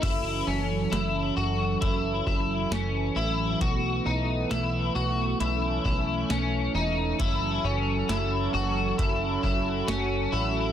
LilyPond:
<<
  \new Staff \with { instrumentName = "Clean electric guitar" } { \time 4/4 \key fis \dorian \tempo 4 = 67 e'8 cis'8 e'8 fis'8 e'8 e'8 cis'8 e'8 | fis'8 dis'8 e'8 fis'8 e'8 e'8 cis'8 dis'8 | e'8 cis'8 e'8 fis'8 e'8 e'8 cis'8 e'8 | }
  \new Staff \with { instrumentName = "Analog synth pad" } { \time 4/4 \key fis \dorian << { <fis cis' a'>1 | a1 | <fis cis' a'>1 | } \\ { e1 | b2 cis'2 | r2 fis'2 | } >> }
  \new Staff \with { instrumentName = "Analog synth bass" } { \clef bass \time 4/4 \key fis \dorian fis,,8 fis,,8 fis,,8 fis,,8 fis,,8 fis,,8 fis,,8 a,,8 | b,,8 b,,8 b,,8 b,,8 b,,8 b,,8 b,,8 e,,8 | fis,,8 fis,,8 fis,,8 fis,,8 fis,,8 fis,,8 fis,,8 a,,8 | }
  \new DrumStaff \with { instrumentName = "Drums" } \drummode { \time 4/4 <cymc hh bd>4 <hh sn>4 <hh bd>8 bd8 <hh sn>4 | <hh bd>4 <hh sn>4 hh8 bd8 <hh sn>4 | <hh bd>4 <hh sn>4 <hh bd>8 bd8 <hh sn>4 | }
>>